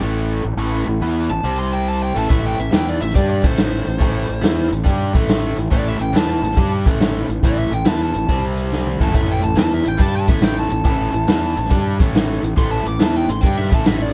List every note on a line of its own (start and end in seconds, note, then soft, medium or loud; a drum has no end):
0.01 0.41 A1 medium
0.01 0.43 A2 medium
0.01 0.43 E3 medium
0.01 0.44 A3 medium
0.44 0.56 A1 medium
0.44 0.56 A2 medium
0.44 0.56 E3 medium
0.57 0.85 A1 medium
0.57 0.86 A2 medium
0.57 0.87 E3 medium
0.57 0.87 A3 medium
0.87 1.00 A1 medium
0.87 0.99 A2 medium
0.87 0.99 E3 medium
1.01 1.28 E2 medium
1.01 1.30 E3 medium
1.01 1.30 B3 medium
1.01 1.30 E4 medium
1.30 1.43 A1 medium
1.30 1.42 A2 medium
1.30 1.42 E3 medium
1.30 1.58 A5 medium
1.44 2.12 C2 medium
1.44 2.14 C3 medium
1.44 2.15 G3 medium
1.44 2.15 C4 medium
1.59 1.73 C6 medium
1.73 1.88 G5 medium
1.88 2.02 A5 medium
2.03 2.16 G5 medium
2.15 2.29 A1 medium
2.15 2.28 A2 medium
2.15 2.29 E3 medium
2.15 2.29 A3 medium
2.15 2.31 A5 medium
2.29 2.57 A1 medium
2.29 2.58 A2 medium
2.29 2.58 E3 medium
2.29 2.58 A3 medium
2.29 2.43 E5 medium
2.29 kick medium
2.29 closed hi-hat medium
2.47 2.59 G5 medium
2.59 2.71 A1 medium
2.59 2.70 A2 medium
2.59 2.70 E3 medium
2.59 2.73 E5 medium
2.59 closed hi-hat soft
2.71 2.99 E2 medium
2.71 3.01 E3 medium
2.71 3.01 B3 medium
2.71 3.01 E4 medium
2.71 2.87 G5 medium
2.71 snare loud
2.71 closed hi-hat medium
2.89 3.01 D5 medium
3.01 3.14 A1 medium
3.01 3.12 A2 medium
3.01 3.13 E3 medium
3.01 3.15 E5 medium
3.01 closed hi-hat medium
3.10 snare soft
3.15 3.42 G2 medium
3.15 3.42 G3 medium
3.15 3.43 D4 medium
3.15 3.43 G4 medium
3.15 3.29 D5 medium
3.15 kick medium
3.15 closed hi-hat medium
3.30 3.44 D5 medium
3.43 3.84 A1 medium
3.43 3.84 A2 medium
3.43 3.84 E3 medium
3.43 3.86 A3 medium
3.43 4.69 C5 medium
3.43 kick loud
3.43 closed hi-hat medium
3.58 snare medium
3.58 closed hi-hat medium
3.85 4.00 A1 medium
3.85 3.97 A2 medium
3.85 3.97 E3 medium
3.85 closed hi-hat medium
3.98 4.28 A1 medium
3.98 4.27 A2 medium
3.98 4.27 E3 medium
3.98 4.28 A3 medium
3.98 kick medium
3.98 closed hi-hat medium
4.28 4.42 A1 medium
4.28 4.40 A2 medium
4.28 4.40 E3 medium
4.28 closed hi-hat medium
4.41 4.70 E2 medium
4.41 4.68 E3 medium
4.41 4.68 B3 medium
4.41 4.70 E4 medium
4.41 snare loud
4.41 closed hi-hat medium
4.69 4.85 A1 medium
4.69 4.82 A2 medium
4.69 4.82 E3 medium
4.69 closed hi-hat medium
4.84 5.13 G2 medium
4.84 5.13 G3 medium
4.84 5.13 D4 medium
4.84 5.13 G4 medium
4.84 kick medium
4.84 closed hi-hat medium
5.14 5.55 A1 medium
5.14 5.56 A2 medium
5.14 5.56 E3 medium
5.14 5.57 A3 medium
5.14 kick loud
5.14 closed hi-hat medium
5.29 snare medium
5.29 closed hi-hat medium
5.57 5.71 A1 medium
5.57 5.68 A2 medium
5.57 5.69 E3 medium
5.57 closed hi-hat medium
5.70 5.99 A1 medium
5.70 5.98 A2 medium
5.70 5.99 E3 medium
5.70 5.99 A3 medium
5.70 5.88 D5 medium
5.70 kick medium
5.70 closed hi-hat medium
5.88 6.01 E5 medium
5.99 6.13 A1 medium
5.99 6.11 A2 medium
5.99 6.11 E3 medium
5.99 6.16 G5 medium
5.99 closed hi-hat soft
6.13 6.41 E2 medium
6.13 6.42 E3 medium
6.13 6.42 B3 medium
6.13 6.42 E4 medium
6.13 6.29 A5 medium
6.13 snare loud
6.13 closed hi-hat medium
6.30 6.71 A5 medium
6.42 6.56 A1 medium
6.42 6.55 A2 medium
6.42 6.55 E3 medium
6.42 closed hi-hat medium
6.51 snare soft
6.57 6.84 G2 medium
6.57 6.85 G3 medium
6.57 6.85 D4 medium
6.57 6.86 G4 loud
6.57 kick medium
6.57 closed hi-hat medium
6.86 7.26 A1 medium
6.86 7.27 A2 medium
6.86 7.27 E3 medium
6.86 7.28 A3 loud
6.86 kick loud
6.86 closed hi-hat medium
7.00 snare medium
7.00 closed hi-hat medium
7.28 7.42 A1 medium
7.28 7.40 A2 medium
7.28 7.40 E3 medium
7.28 closed hi-hat medium
7.43 7.70 A1 medium
7.43 7.71 A2 medium
7.43 7.72 E3 medium
7.43 7.72 A3 medium
7.43 7.58 D5 medium
7.43 kick medium
7.43 closed hi-hat medium
7.58 7.72 E5 medium
7.70 7.84 A1 medium
7.70 7.83 A2 medium
7.70 7.84 E3 medium
7.70 7.87 G5 medium
7.70 closed hi-hat medium
7.85 8.13 E2 medium
7.85 8.13 E3 medium
7.85 8.14 B3 medium
7.85 8.13 E4 medium
7.85 8.00 A5 medium
7.85 snare loud
7.85 closed hi-hat medium
8.04 8.43 A5 medium
8.14 8.28 A1 medium
8.14 8.25 A2 medium
8.14 8.26 E3 medium
8.14 closed hi-hat medium
8.28 8.97 C2 medium
8.28 8.99 C3 medium
8.28 9.00 G3 medium
8.28 9.00 C4 medium
8.28 kick medium
8.28 closed hi-hat medium
8.57 closed hi-hat medium
8.72 snare soft
8.87 mid tom soft
9.00 9.13 A1 medium
9.00 9.13 A2 medium
9.00 9.13 E3 medium
9.00 9.14 A3 medium
9.00 9.16 A5 medium
9.00 kick medium
9.07 floor tom medium
9.14 9.41 A1 medium
9.14 9.41 A2 medium
9.14 9.42 E3 medium
9.14 9.43 A3 medium
9.14 9.28 E5 medium
9.14 kick medium
9.14 closed hi-hat medium
9.31 9.44 G5 medium
9.43 9.56 A1 medium
9.43 9.54 A2 medium
9.43 9.54 E3 medium
9.43 9.57 A5 medium
9.43 closed hi-hat medium
9.55 9.84 E2 medium
9.55 9.84 E3 medium
9.55 9.84 B3 medium
9.55 9.85 E4 medium
9.55 9.72 A5 loud
9.55 snare loud
9.55 closed hi-hat medium
9.74 9.88 E5 medium
9.85 9.99 A1 medium
9.85 9.96 A2 medium
9.85 9.97 E3 medium
9.85 10.01 G5 medium
9.85 closed hi-hat medium
9.97 10.27 G2 medium
9.97 10.27 G3 medium
9.97 10.27 D4 medium
9.97 10.27 G4 medium
9.97 10.14 A5 medium
9.97 kick loud
9.97 closed hi-hat medium
10.16 10.29 A5 medium
10.28 10.69 A1 medium
10.28 10.69 A2 medium
10.28 10.69 E3 medium
10.28 10.70 A3 loud
10.28 10.43 E5 medium
10.28 kick loud
10.28 closed hi-hat medium
10.41 10.57 G5 medium
10.41 snare loud
10.41 closed hi-hat medium
10.59 10.70 A5 medium
10.70 10.84 A1 medium
10.70 10.82 A2 medium
10.70 10.82 E3 medium
10.70 11.96 A5 medium
10.70 closed hi-hat medium
10.84 11.12 A1 medium
10.84 11.10 A2 medium
10.84 11.11 E3 medium
10.84 11.13 A3 medium
10.84 kick medium
10.84 closed hi-hat medium
11.12 11.27 A1 medium
11.12 11.24 A2 medium
11.12 11.25 E3 medium
11.12 closed hi-hat medium
11.27 11.55 E2 medium
11.27 11.56 E3 medium
11.27 11.56 B3 medium
11.27 11.56 E4 medium
11.27 snare loud
11.27 closed hi-hat medium
11.57 11.70 A1 medium
11.57 11.69 A2 medium
11.57 11.69 E3 medium
11.57 closed hi-hat medium
11.65 snare soft
11.70 11.98 G2 medium
11.70 11.99 G3 medium
11.70 12.00 D4 medium
11.70 12.00 G4 medium
11.70 kick medium
11.70 closed hi-hat medium
12.00 12.40 A1 medium
12.00 12.41 A2 medium
12.00 12.42 E3 medium
12.00 12.43 A3 medium
12.00 kick loud
12.00 closed hi-hat medium
12.15 snare loud
12.15 closed hi-hat medium
12.42 12.56 A1 medium
12.42 12.54 A2 medium
12.42 12.54 E3 medium
12.42 closed hi-hat medium
12.56 12.84 A1 medium
12.56 12.85 A2 medium
12.56 12.85 E3 medium
12.56 12.85 A3 medium
12.56 12.71 C6 medium
12.56 kick medium
12.56 closed hi-hat medium
12.71 12.85 A5 medium
12.85 12.99 A1 medium
12.85 12.98 A2 medium
12.85 12.98 E3 medium
12.85 13.01 D6 medium
12.85 closed hi-hat soft
12.99 13.26 E2 medium
12.99 13.28 E3 medium
12.99 13.28 B3 medium
12.99 13.28 E4 medium
12.99 13.15 A5 medium
12.99 snare loud
12.99 closed hi-hat medium
13.17 13.29 G5 medium
13.28 13.41 A1 medium
13.28 13.40 A2 medium
13.28 13.41 E3 medium
13.28 13.43 C6 medium
13.28 closed hi-hat medium
13.41 13.70 G2 medium
13.41 13.71 G3 medium
13.41 13.71 D4 medium
13.41 13.71 G4 medium
13.41 13.56 G5 medium
13.41 kick medium
13.41 closed hi-hat medium
13.57 13.71 E5 medium
13.57 snare soft
13.71 14.12 A1 medium
13.71 14.13 A2 medium
13.71 14.13 E3 medium
13.71 14.13 A3 loud
13.71 13.87 A5 medium
13.71 kick medium
13.71 closed hi-hat medium
13.85 14.02 E5 medium
13.85 snare medium
13.85 closed hi-hat medium
14.02 14.13 D5 medium